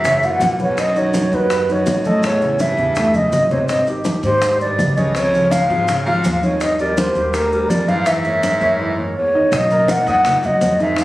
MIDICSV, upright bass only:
0, 0, Header, 1, 2, 480
1, 0, Start_track
1, 0, Tempo, 364520
1, 1021, Time_signature, 4, 2, 24, 8
1, 14541, End_track
2, 0, Start_track
2, 0, Title_t, "Upright bass"
2, 0, Program_c, 0, 32
2, 0, Note_on_c, 0, 42, 74
2, 486, Note_off_c, 0, 42, 0
2, 522, Note_on_c, 0, 35, 78
2, 1656, Note_off_c, 0, 35, 0
2, 1734, Note_on_c, 0, 42, 79
2, 2408, Note_off_c, 0, 42, 0
2, 2451, Note_on_c, 0, 33, 75
2, 3581, Note_off_c, 0, 33, 0
2, 3649, Note_on_c, 0, 40, 76
2, 4325, Note_off_c, 0, 40, 0
2, 4373, Note_on_c, 0, 32, 69
2, 5502, Note_off_c, 0, 32, 0
2, 5570, Note_on_c, 0, 44, 83
2, 6246, Note_off_c, 0, 44, 0
2, 6300, Note_on_c, 0, 37, 79
2, 7426, Note_off_c, 0, 37, 0
2, 7503, Note_on_c, 0, 32, 82
2, 8173, Note_off_c, 0, 32, 0
2, 8222, Note_on_c, 0, 39, 81
2, 9347, Note_off_c, 0, 39, 0
2, 9416, Note_on_c, 0, 39, 70
2, 10090, Note_off_c, 0, 39, 0
2, 10136, Note_on_c, 0, 42, 74
2, 11263, Note_off_c, 0, 42, 0
2, 11339, Note_on_c, 0, 42, 80
2, 12010, Note_off_c, 0, 42, 0
2, 12531, Note_on_c, 0, 35, 90
2, 13204, Note_off_c, 0, 35, 0
2, 13253, Note_on_c, 0, 42, 87
2, 13924, Note_off_c, 0, 42, 0
2, 13974, Note_on_c, 0, 41, 85
2, 14541, Note_off_c, 0, 41, 0
2, 14541, End_track
0, 0, End_of_file